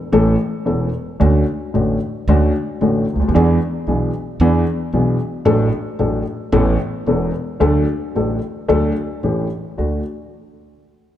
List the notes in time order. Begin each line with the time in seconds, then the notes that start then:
0.12 A1 A2 E3 A3 C#4 A4
0.66 E1 E2 E3 A3 C#4 A4
1.20 D2 D3 A3 C#4 F#4
1.74 A1 A2 D3 A3 C#4 F#4
2.28 D2 D3 A3 C#4 F#4
2.81 A1 A2 D3 A3 C#4 F#4
3.14 C#2
3.20 D2
3.28 D#2
3.34 E2 E3 B3 D4 G#4
3.87 B1 B2 E3 B3 D4 G#4
4.40 E2 E3 B3 D4 G#4
4.93 B1 B2 E3 B3 D4 G#4
5.45 A1 A2 F#3 A3 D4 A4
5.99 A1 A2 F#3 A3 D4 A4
6.52 A1 A2 E3 B3 C#4 A4
7.06 E1 E2 E3 B3 C#4 A4
7.60 D2 D3 F#3 A3 D4 A4
8.15 A1 A2 F#3 A3 D4 A4
8.68 D2 D3 F#3 A3 D4 A4
9.23 A1 A2 E3 A3 C#4 G4
9.78 D2 A3 D4 F#4